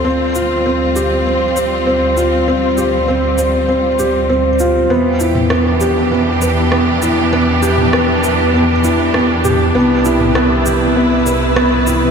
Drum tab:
SH |--x---x---x---x-|--x---x---x---x-|--x---x---x---x-|--x---x---x---x-|
SD |----------------|----------------|----r-------r---|----r-------r---|
T2 |----------------|----------------|---o------------|---o----------o-|

SH |--x---x---x---x-|
SD |----r-------r---|
T2 |---o------------|